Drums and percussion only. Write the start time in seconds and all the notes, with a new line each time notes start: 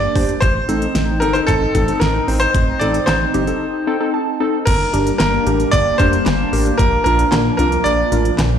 0.16 kick, open hi-hat
0.29 closed hi-hat
0.42 kick, closed hi-hat
0.69 closed hi-hat
0.82 closed hi-hat
0.95 snare, closed hi-hat
1.22 closed hi-hat
1.35 closed hi-hat
1.48 kick, closed hi-hat
1.75 kick, closed hi-hat
1.88 closed hi-hat
2.01 snare, closed hi-hat
2.28 open hi-hat
2.41 closed hi-hat
2.54 kick, closed hi-hat
2.81 closed hi-hat
2.94 closed hi-hat
3.07 snare, clap, closed hi-hat
3.34 closed hi-hat
3.47 closed hi-hat
4.67 kick, closed hi-hat, crash
4.94 closed hi-hat
5.07 closed hi-hat
5.20 snare, clap, closed hi-hat
5.47 closed hi-hat
5.60 closed hi-hat
5.73 kick, closed hi-hat
6.00 kick, closed hi-hat
6.13 closed hi-hat
6.26 snare, clap, closed hi-hat
6.53 open hi-hat
6.66 closed hi-hat
6.79 kick, closed hi-hat
7.06 closed hi-hat
7.19 closed hi-hat
7.32 snare, clap, closed hi-hat
7.59 closed hi-hat
7.72 closed hi-hat
7.86 closed hi-hat
8.12 closed hi-hat
8.25 closed hi-hat
8.39 snare, clap, closed hi-hat